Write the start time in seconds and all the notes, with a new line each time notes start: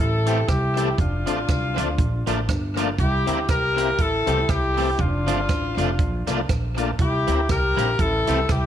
0.00 A1 E4 A4
0.26 E3 A3 C4 E4 G4 A4, closed hi-hat
0.48 C2 E4 G4, kick, cross-stick, closed hi-hat
0.76 E3 A3 C4 E4 G4 A4, closed hi-hat
0.98 F1 D4 F4, kick, closed hi-hat
1.26 A1 F3 A3 C4 D4 F4 A4, closed hi-hat
1.48 C2, kick, cross-stick, closed hi-hat
1.76 D2 F3 A3 C4 D4 F4 A4, closed hi-hat
1.98 A#1, kick, closed hi-hat
2.26 A1 F3 A3 A#3 D4 F4 A4, closed hi-hat
2.49 G1, kick, cross-stick, closed hi-hat
2.76 F3 A3 A#3 D4 F4 A4, closed hi-hat
2.99 C2 E4 G4, kick, closed hi-hat
3.26 D2 G3 A#3 C4 E4 G4 A#4, closed hi-hat
3.48 C2 G4 A#4, kick, cross-stick, closed hi-hat
3.76 G3 A#3 C4 E4 G4 A#4, closed hi-hat
3.99 A1 E4 A4, kick, closed hi-hat
4.26 C2 E3 A3 C4 E4 G4 A4, closed hi-hat
4.48 C2 E4 G4, kick, cross-stick, closed hi-hat
4.77 E3 A3 C4 E4 G4 A4, open hi-hat
4.99 F1 D4 F4, kick, closed hi-hat
5.27 G1 F3 A3 C4 D4 F4 A4, closed hi-hat
5.49 A1, kick, cross-stick, closed hi-hat
5.77 F1 F3 A3 C4 D4 F4 A4, closed hi-hat
5.99 A#1, kick, closed hi-hat
6.27 C2 F3 A3 A#3 D4 F4 A4, cross-stick, closed hi-hat
6.49 A#1, kick, cross-stick, closed hi-hat
6.77 F3 A3 A#3 D4 F4 A4, closed hi-hat
6.99 C2 E4 G4, kick, closed hi-hat
7.27 D2 G3 A#3 C4 E4 G4 A#4, closed hi-hat
7.49 C2 G4 A#4, kick, cross-stick, closed hi-hat
7.77 A#1 G3 A#3 C4 E4 G4 A#4, closed hi-hat
7.99 A1 E4 A4, kick, closed hi-hat
8.27 C2 E3 A3 C4 E4 G4 A4, closed hi-hat
8.49 C2 E4 G4, kick, cross-stick, closed hi-hat